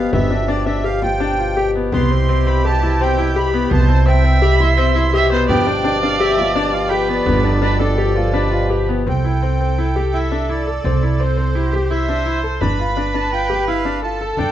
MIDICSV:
0, 0, Header, 1, 7, 480
1, 0, Start_track
1, 0, Tempo, 357569
1, 173, Time_signature, 5, 2, 24, 8
1, 13133, Tempo, 353357
1, 19563, End_track
2, 0, Start_track
2, 0, Title_t, "Accordion"
2, 0, Program_c, 0, 21
2, 0, Note_on_c, 0, 77, 83
2, 150, Note_off_c, 0, 77, 0
2, 179, Note_on_c, 0, 76, 88
2, 647, Note_on_c, 0, 74, 87
2, 670, Note_off_c, 0, 76, 0
2, 873, Note_off_c, 0, 74, 0
2, 878, Note_on_c, 0, 76, 86
2, 1124, Note_on_c, 0, 77, 95
2, 1134, Note_off_c, 0, 76, 0
2, 1377, Note_off_c, 0, 77, 0
2, 1378, Note_on_c, 0, 79, 100
2, 2295, Note_off_c, 0, 79, 0
2, 2600, Note_on_c, 0, 84, 102
2, 3306, Note_on_c, 0, 83, 87
2, 3340, Note_off_c, 0, 84, 0
2, 3557, Note_off_c, 0, 83, 0
2, 3559, Note_on_c, 0, 81, 98
2, 4050, Note_on_c, 0, 79, 93
2, 4051, Note_off_c, 0, 81, 0
2, 4525, Note_on_c, 0, 83, 98
2, 4536, Note_off_c, 0, 79, 0
2, 4963, Note_off_c, 0, 83, 0
2, 5004, Note_on_c, 0, 81, 88
2, 5476, Note_on_c, 0, 79, 96
2, 5488, Note_off_c, 0, 81, 0
2, 5934, Note_on_c, 0, 83, 105
2, 5961, Note_off_c, 0, 79, 0
2, 6181, Note_on_c, 0, 84, 106
2, 6183, Note_off_c, 0, 83, 0
2, 7080, Note_off_c, 0, 84, 0
2, 7378, Note_on_c, 0, 79, 97
2, 8037, Note_off_c, 0, 79, 0
2, 8095, Note_on_c, 0, 77, 87
2, 8317, Note_on_c, 0, 76, 98
2, 8334, Note_off_c, 0, 77, 0
2, 8760, Note_off_c, 0, 76, 0
2, 8790, Note_on_c, 0, 74, 91
2, 9026, Note_on_c, 0, 77, 82
2, 9037, Note_off_c, 0, 74, 0
2, 9254, Note_on_c, 0, 79, 89
2, 9275, Note_off_c, 0, 77, 0
2, 9506, Note_on_c, 0, 74, 81
2, 9509, Note_off_c, 0, 79, 0
2, 11630, Note_off_c, 0, 74, 0
2, 12193, Note_on_c, 0, 79, 76
2, 13613, Note_on_c, 0, 76, 90
2, 13672, Note_off_c, 0, 79, 0
2, 14103, Note_on_c, 0, 74, 75
2, 14112, Note_off_c, 0, 76, 0
2, 15053, Note_on_c, 0, 72, 86
2, 15090, Note_off_c, 0, 74, 0
2, 16024, Note_on_c, 0, 76, 92
2, 16046, Note_off_c, 0, 72, 0
2, 16689, Note_off_c, 0, 76, 0
2, 16982, Note_on_c, 0, 83, 90
2, 17697, Note_on_c, 0, 81, 83
2, 17721, Note_off_c, 0, 83, 0
2, 17921, Note_off_c, 0, 81, 0
2, 17938, Note_on_c, 0, 79, 89
2, 18386, Note_off_c, 0, 79, 0
2, 18425, Note_on_c, 0, 77, 92
2, 18866, Note_off_c, 0, 77, 0
2, 18905, Note_on_c, 0, 81, 86
2, 19378, Note_on_c, 0, 79, 87
2, 19393, Note_off_c, 0, 81, 0
2, 19563, Note_off_c, 0, 79, 0
2, 19563, End_track
3, 0, Start_track
3, 0, Title_t, "Viola"
3, 0, Program_c, 1, 41
3, 2576, Note_on_c, 1, 67, 90
3, 4966, Note_on_c, 1, 72, 94
3, 4986, Note_off_c, 1, 67, 0
3, 5451, Note_on_c, 1, 76, 102
3, 5471, Note_off_c, 1, 72, 0
3, 6888, Note_off_c, 1, 76, 0
3, 6895, Note_on_c, 1, 76, 108
3, 7116, Note_off_c, 1, 76, 0
3, 7135, Note_on_c, 1, 72, 106
3, 7352, Note_off_c, 1, 72, 0
3, 7360, Note_on_c, 1, 74, 104
3, 9257, Note_on_c, 1, 71, 96
3, 9277, Note_off_c, 1, 74, 0
3, 10220, Note_off_c, 1, 71, 0
3, 10244, Note_on_c, 1, 71, 89
3, 10451, Note_off_c, 1, 71, 0
3, 10459, Note_on_c, 1, 69, 89
3, 11198, Note_on_c, 1, 71, 78
3, 11218, Note_off_c, 1, 69, 0
3, 11932, Note_off_c, 1, 71, 0
3, 12167, Note_on_c, 1, 69, 75
3, 15537, Note_on_c, 1, 67, 82
3, 15557, Note_off_c, 1, 69, 0
3, 16023, Note_on_c, 1, 72, 96
3, 16043, Note_off_c, 1, 67, 0
3, 16974, Note_on_c, 1, 71, 94
3, 16994, Note_off_c, 1, 72, 0
3, 18888, Note_on_c, 1, 69, 94
3, 18908, Note_off_c, 1, 71, 0
3, 19563, Note_off_c, 1, 69, 0
3, 19563, End_track
4, 0, Start_track
4, 0, Title_t, "Grand piano"
4, 0, Program_c, 2, 0
4, 170, Note_on_c, 2, 59, 83
4, 369, Note_off_c, 2, 59, 0
4, 410, Note_on_c, 2, 62, 71
4, 609, Note_off_c, 2, 62, 0
4, 648, Note_on_c, 2, 62, 82
4, 848, Note_off_c, 2, 62, 0
4, 890, Note_on_c, 2, 62, 77
4, 1091, Note_off_c, 2, 62, 0
4, 1128, Note_on_c, 2, 67, 73
4, 1330, Note_off_c, 2, 67, 0
4, 1368, Note_on_c, 2, 65, 72
4, 1570, Note_off_c, 2, 65, 0
4, 1613, Note_on_c, 2, 62, 78
4, 1815, Note_off_c, 2, 62, 0
4, 1861, Note_on_c, 2, 65, 73
4, 2062, Note_off_c, 2, 65, 0
4, 2103, Note_on_c, 2, 67, 71
4, 2306, Note_off_c, 2, 67, 0
4, 2355, Note_on_c, 2, 59, 72
4, 2553, Note_off_c, 2, 59, 0
4, 2599, Note_on_c, 2, 59, 89
4, 2796, Note_off_c, 2, 59, 0
4, 2830, Note_on_c, 2, 60, 72
4, 3031, Note_off_c, 2, 60, 0
4, 3073, Note_on_c, 2, 60, 84
4, 3272, Note_off_c, 2, 60, 0
4, 3314, Note_on_c, 2, 60, 76
4, 3512, Note_off_c, 2, 60, 0
4, 3556, Note_on_c, 2, 67, 76
4, 3753, Note_off_c, 2, 67, 0
4, 3797, Note_on_c, 2, 64, 71
4, 3995, Note_off_c, 2, 64, 0
4, 4038, Note_on_c, 2, 60, 90
4, 4236, Note_off_c, 2, 60, 0
4, 4271, Note_on_c, 2, 64, 78
4, 4470, Note_off_c, 2, 64, 0
4, 4508, Note_on_c, 2, 67, 75
4, 4708, Note_off_c, 2, 67, 0
4, 4746, Note_on_c, 2, 59, 85
4, 4946, Note_off_c, 2, 59, 0
4, 4983, Note_on_c, 2, 59, 82
4, 5183, Note_off_c, 2, 59, 0
4, 5217, Note_on_c, 2, 60, 76
4, 5419, Note_off_c, 2, 60, 0
4, 5457, Note_on_c, 2, 60, 85
4, 5658, Note_off_c, 2, 60, 0
4, 5695, Note_on_c, 2, 60, 78
4, 5895, Note_off_c, 2, 60, 0
4, 5932, Note_on_c, 2, 67, 86
4, 6133, Note_off_c, 2, 67, 0
4, 6175, Note_on_c, 2, 64, 69
4, 6375, Note_off_c, 2, 64, 0
4, 6413, Note_on_c, 2, 60, 93
4, 6613, Note_off_c, 2, 60, 0
4, 6649, Note_on_c, 2, 64, 83
4, 6850, Note_off_c, 2, 64, 0
4, 6893, Note_on_c, 2, 67, 81
4, 7091, Note_off_c, 2, 67, 0
4, 7135, Note_on_c, 2, 59, 83
4, 7330, Note_off_c, 2, 59, 0
4, 7371, Note_on_c, 2, 59, 92
4, 7567, Note_off_c, 2, 59, 0
4, 7608, Note_on_c, 2, 62, 78
4, 7804, Note_off_c, 2, 62, 0
4, 7844, Note_on_c, 2, 62, 87
4, 8041, Note_off_c, 2, 62, 0
4, 8095, Note_on_c, 2, 62, 81
4, 8287, Note_off_c, 2, 62, 0
4, 8327, Note_on_c, 2, 67, 85
4, 8521, Note_off_c, 2, 67, 0
4, 8561, Note_on_c, 2, 65, 74
4, 8756, Note_off_c, 2, 65, 0
4, 8799, Note_on_c, 2, 62, 91
4, 8994, Note_off_c, 2, 62, 0
4, 9038, Note_on_c, 2, 65, 80
4, 9233, Note_off_c, 2, 65, 0
4, 9279, Note_on_c, 2, 67, 78
4, 9474, Note_off_c, 2, 67, 0
4, 9512, Note_on_c, 2, 59, 79
4, 9709, Note_off_c, 2, 59, 0
4, 9751, Note_on_c, 2, 59, 86
4, 9948, Note_off_c, 2, 59, 0
4, 9987, Note_on_c, 2, 62, 75
4, 10186, Note_off_c, 2, 62, 0
4, 10227, Note_on_c, 2, 62, 91
4, 10426, Note_off_c, 2, 62, 0
4, 10472, Note_on_c, 2, 62, 74
4, 10670, Note_off_c, 2, 62, 0
4, 10710, Note_on_c, 2, 67, 78
4, 10910, Note_off_c, 2, 67, 0
4, 10945, Note_on_c, 2, 65, 72
4, 11149, Note_off_c, 2, 65, 0
4, 11189, Note_on_c, 2, 62, 87
4, 11394, Note_off_c, 2, 62, 0
4, 11431, Note_on_c, 2, 65, 80
4, 11638, Note_off_c, 2, 65, 0
4, 11678, Note_on_c, 2, 67, 70
4, 11883, Note_off_c, 2, 67, 0
4, 11930, Note_on_c, 2, 59, 75
4, 12130, Note_off_c, 2, 59, 0
4, 12170, Note_on_c, 2, 60, 73
4, 12371, Note_off_c, 2, 60, 0
4, 12410, Note_on_c, 2, 64, 67
4, 12610, Note_off_c, 2, 64, 0
4, 12651, Note_on_c, 2, 60, 75
4, 12851, Note_off_c, 2, 60, 0
4, 12892, Note_on_c, 2, 60, 66
4, 13091, Note_off_c, 2, 60, 0
4, 13133, Note_on_c, 2, 64, 71
4, 13334, Note_off_c, 2, 64, 0
4, 13374, Note_on_c, 2, 67, 67
4, 13575, Note_off_c, 2, 67, 0
4, 13618, Note_on_c, 2, 64, 74
4, 13818, Note_off_c, 2, 64, 0
4, 13856, Note_on_c, 2, 62, 74
4, 14057, Note_off_c, 2, 62, 0
4, 14096, Note_on_c, 2, 64, 71
4, 14297, Note_off_c, 2, 64, 0
4, 14338, Note_on_c, 2, 69, 72
4, 14537, Note_off_c, 2, 69, 0
4, 14581, Note_on_c, 2, 60, 83
4, 14779, Note_off_c, 2, 60, 0
4, 14820, Note_on_c, 2, 64, 70
4, 15019, Note_off_c, 2, 64, 0
4, 15055, Note_on_c, 2, 60, 74
4, 15256, Note_off_c, 2, 60, 0
4, 15290, Note_on_c, 2, 60, 72
4, 15493, Note_off_c, 2, 60, 0
4, 15537, Note_on_c, 2, 64, 76
4, 15737, Note_off_c, 2, 64, 0
4, 15777, Note_on_c, 2, 67, 63
4, 15977, Note_off_c, 2, 67, 0
4, 16015, Note_on_c, 2, 64, 81
4, 16216, Note_off_c, 2, 64, 0
4, 16260, Note_on_c, 2, 62, 69
4, 16457, Note_off_c, 2, 62, 0
4, 16495, Note_on_c, 2, 64, 75
4, 16694, Note_off_c, 2, 64, 0
4, 16735, Note_on_c, 2, 69, 72
4, 16935, Note_off_c, 2, 69, 0
4, 16977, Note_on_c, 2, 62, 82
4, 17177, Note_off_c, 2, 62, 0
4, 17223, Note_on_c, 2, 65, 77
4, 17419, Note_off_c, 2, 65, 0
4, 17460, Note_on_c, 2, 62, 79
4, 17657, Note_off_c, 2, 62, 0
4, 17699, Note_on_c, 2, 62, 71
4, 17897, Note_off_c, 2, 62, 0
4, 17940, Note_on_c, 2, 65, 74
4, 18138, Note_off_c, 2, 65, 0
4, 18177, Note_on_c, 2, 67, 68
4, 18377, Note_off_c, 2, 67, 0
4, 18422, Note_on_c, 2, 64, 81
4, 18619, Note_off_c, 2, 64, 0
4, 18659, Note_on_c, 2, 62, 77
4, 18856, Note_off_c, 2, 62, 0
4, 18904, Note_on_c, 2, 65, 71
4, 19098, Note_off_c, 2, 65, 0
4, 19147, Note_on_c, 2, 69, 75
4, 19340, Note_off_c, 2, 69, 0
4, 19384, Note_on_c, 2, 62, 81
4, 19563, Note_off_c, 2, 62, 0
4, 19563, End_track
5, 0, Start_track
5, 0, Title_t, "Harmonium"
5, 0, Program_c, 3, 20
5, 0, Note_on_c, 3, 47, 71
5, 0, Note_on_c, 3, 53, 77
5, 0, Note_on_c, 3, 67, 88
5, 2542, Note_off_c, 3, 53, 0
5, 2546, Note_off_c, 3, 67, 0
5, 2586, Note_on_c, 3, 48, 77
5, 2591, Note_on_c, 3, 64, 81
5, 7320, Note_off_c, 3, 48, 0
5, 7323, Note_off_c, 3, 64, 0
5, 7358, Note_on_c, 3, 67, 99
5, 7360, Note_on_c, 3, 53, 86
5, 12118, Note_off_c, 3, 67, 0
5, 12119, Note_off_c, 3, 53, 0
5, 12120, Note_off_c, 3, 47, 0
5, 19563, End_track
6, 0, Start_track
6, 0, Title_t, "Upright bass"
6, 0, Program_c, 4, 32
6, 171, Note_on_c, 4, 31, 83
6, 2541, Note_off_c, 4, 31, 0
6, 2583, Note_on_c, 4, 36, 83
6, 4938, Note_off_c, 4, 36, 0
6, 4981, Note_on_c, 4, 36, 88
6, 7318, Note_off_c, 4, 36, 0
6, 7369, Note_on_c, 4, 31, 88
6, 9700, Note_off_c, 4, 31, 0
6, 9744, Note_on_c, 4, 31, 93
6, 12122, Note_off_c, 4, 31, 0
6, 12167, Note_on_c, 4, 36, 72
6, 14529, Note_off_c, 4, 36, 0
6, 14574, Note_on_c, 4, 36, 76
6, 16928, Note_off_c, 4, 36, 0
6, 16975, Note_on_c, 4, 31, 80
6, 19325, Note_off_c, 4, 31, 0
6, 19369, Note_on_c, 4, 31, 80
6, 19563, Note_off_c, 4, 31, 0
6, 19563, End_track
7, 0, Start_track
7, 0, Title_t, "Frame drum"
7, 172, Note_on_c, 9, 64, 64
7, 307, Note_off_c, 9, 64, 0
7, 412, Note_on_c, 9, 64, 24
7, 546, Note_off_c, 9, 64, 0
7, 1130, Note_on_c, 9, 64, 20
7, 1264, Note_off_c, 9, 64, 0
7, 1373, Note_on_c, 9, 64, 53
7, 1507, Note_off_c, 9, 64, 0
7, 1604, Note_on_c, 9, 64, 18
7, 1739, Note_off_c, 9, 64, 0
7, 2346, Note_on_c, 9, 64, 21
7, 2480, Note_off_c, 9, 64, 0
7, 2581, Note_on_c, 9, 64, 55
7, 2715, Note_off_c, 9, 64, 0
7, 2814, Note_on_c, 9, 64, 19
7, 2948, Note_off_c, 9, 64, 0
7, 3053, Note_on_c, 9, 64, 19
7, 3187, Note_off_c, 9, 64, 0
7, 3783, Note_on_c, 9, 64, 43
7, 3917, Note_off_c, 9, 64, 0
7, 4982, Note_on_c, 9, 64, 60
7, 5116, Note_off_c, 9, 64, 0
7, 5223, Note_on_c, 9, 64, 20
7, 5357, Note_off_c, 9, 64, 0
7, 5457, Note_on_c, 9, 64, 20
7, 5591, Note_off_c, 9, 64, 0
7, 6175, Note_on_c, 9, 64, 47
7, 6309, Note_off_c, 9, 64, 0
7, 7371, Note_on_c, 9, 64, 53
7, 7505, Note_off_c, 9, 64, 0
7, 7613, Note_on_c, 9, 64, 18
7, 7748, Note_off_c, 9, 64, 0
7, 7847, Note_on_c, 9, 64, 17
7, 7981, Note_off_c, 9, 64, 0
7, 8562, Note_on_c, 9, 64, 52
7, 8697, Note_off_c, 9, 64, 0
7, 9751, Note_on_c, 9, 64, 61
7, 9886, Note_off_c, 9, 64, 0
7, 10963, Note_on_c, 9, 64, 47
7, 11097, Note_off_c, 9, 64, 0
7, 11691, Note_on_c, 9, 64, 21
7, 11826, Note_off_c, 9, 64, 0
7, 12181, Note_on_c, 9, 64, 53
7, 12315, Note_off_c, 9, 64, 0
7, 12415, Note_on_c, 9, 64, 17
7, 12549, Note_off_c, 9, 64, 0
7, 12654, Note_on_c, 9, 64, 19
7, 12788, Note_off_c, 9, 64, 0
7, 13369, Note_on_c, 9, 64, 43
7, 13505, Note_off_c, 9, 64, 0
7, 14573, Note_on_c, 9, 64, 50
7, 14709, Note_off_c, 9, 64, 0
7, 14819, Note_on_c, 9, 64, 16
7, 14955, Note_off_c, 9, 64, 0
7, 15063, Note_on_c, 9, 64, 19
7, 15199, Note_off_c, 9, 64, 0
7, 15789, Note_on_c, 9, 64, 43
7, 15925, Note_off_c, 9, 64, 0
7, 16976, Note_on_c, 9, 64, 56
7, 17112, Note_off_c, 9, 64, 0
7, 17223, Note_on_c, 9, 64, 19
7, 17359, Note_off_c, 9, 64, 0
7, 17460, Note_on_c, 9, 64, 19
7, 17596, Note_off_c, 9, 64, 0
7, 18179, Note_on_c, 9, 64, 43
7, 18315, Note_off_c, 9, 64, 0
7, 19365, Note_on_c, 9, 64, 46
7, 19501, Note_off_c, 9, 64, 0
7, 19563, End_track
0, 0, End_of_file